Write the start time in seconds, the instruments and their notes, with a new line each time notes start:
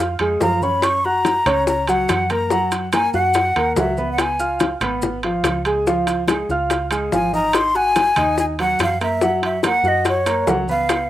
Already playing: fingered electric bass F2, grand piano F4 F5 F6
0.19 fingered electric bass F2, grand piano G#3 G#4 G#5, high bongo, high conga, high timbale, claves
0.41 fingered electric bass F#2, grand piano F3 F4 F5, flute A#5, high bongo, low bongo, high conga, low timbale, maracas
0.62 grand piano C#4 C#5 C#6, flute B5, high conga, maracas
0.82 flute C#6, high bongo, high conga, high timbale, claves, maracas
1.04 grand piano F#4 F#5 F#6, flute A#5, high conga
1.25 high bongo, high conga, high timbale, maracas
1.46 fingered electric bass C#2, grand piano C#4 C#5 C#6, high conga, low conga, high timbale, claves, maracas
1.67 flute A#5, high bongo, high conga, maracas
1.87 grand piano F#3 F#4 F#5, flute F#5, high conga, high timbale, maracas
2.09 fingered electric bass F#2, high bongo, low bongo, high conga, high timbale, claves, maracas
2.30 grand piano A#3 A#4 A#5, flute A#5, high conga, high timbale, maracas
2.50 grand piano F#3 F#4 F#5, high bongo, maracas
2.72 high bongo, high conga, high timbale, maracas
2.92 grand piano A#3 A#4 A#5, flute G#5, high bongo, high conga, high timbale, claves, maracas
3.13 fingered electric bass F#2, grand piano F#4 F#5 F#6, flute F#5, high bongo, maracas
3.34 high bongo, high conga, high timbale, maracas
3.56 fingered electric bass D#2, grand piano A#3 A#4 A#5, high bongo, high conga, high timbale, claves
3.76 fingered electric bass C#2, grand piano F#3 F#4 F#5, flute E5, high bongo, low bongo, high conga, low timbale, maracas
3.97 grand piano B3 B4 B5, high conga, maracas
4.12 flute F#5
4.18 flute G#5, high bongo, high conga, high timbale, claves, maracas
4.39 grand piano F4 F5 F6, high conga, maracas
4.60 high bongo, high conga, high timbale, maracas
4.81 fingered electric bass G#1, grand piano B3 B4 B5, high conga, low conga, high timbale, claves, maracas
5.02 high bongo, high conga, low conga, maracas
5.23 grand piano F3 F4 F5, high conga, high timbale
5.43 fingered electric bass C#2, high bongo, low bongo, high conga, high timbale, claves, maracas
5.65 grand piano G#3 G#4 G#5, high timbale, maracas
5.86 grand piano F3 F4 F5, high bongo, high conga, maracas
6.07 high bongo, high conga, high timbale, maracas
6.28 grand piano G#3 G#4 G#5, high bongo, high conga, high timbale, claves, maracas
6.49 fingered electric bass C#2, grand piano F4 F5 F6, high bongo, maracas
6.70 high bongo, high conga, high timbale, maracas
6.91 grand piano G#3 G#4 G#5, high bongo, high conga, high timbale, claves, maracas
7.11 fingered electric bass G#1, grand piano F3 F4 F5, flute G#5, high bongo, low bongo, high conga, maracas
7.33 grand piano D#4 D#5 D#6, flute A#5, high conga, maracas
7.53 flute C6, high bongo, high timbale, claves, maracas
7.75 grand piano F#4 F#5 F#6, flute G#5, high conga
7.96 high bongo, high conga, high timbale, maracas
8.16 fingered electric bass D#2, grand piano D#4 D#5 D#6, high conga, low conga, high timbale, claves, maracas
8.38 flute G#5, high bongo, high conga, maracas
8.59 grand piano F#3 F#4 F#5, flute F#5, high conga, high timbale
8.79 fingered electric bass F#2, flute F5, high bongo, low bongo, high conga, high timbale, claves, maracas
9.01 grand piano A#3 A#4 A#5, flute E5, high timbale, maracas
9.21 grand piano F#3 F#4 F#5, high bongo, high conga, maracas
9.42 flute E5, high bongo, high conga, high timbale
9.63 grand piano A#3 A#4 A#5, flute F#5, high bongo, high conga, high timbale, claves, maracas
9.83 fingered electric bass F#2, grand piano F#4 F#5 F#6, high bongo, high conga, maracas
9.88 flute D#5
10.05 flute C#5, high bongo, high conga, high timbale, maracas
10.26 grand piano A#3 A#4 A#5, high bongo, high conga, high timbale, claves, maracas
10.47 fingered electric bass C#2, grand piano F#3 F#4 F#5, high bongo, low bongo, high conga, low timbale, maracas
10.68 grand piano B3 B4 B5, flute F5, high conga, maracas
10.89 high bongo, high conga, high timbale, claves, maracas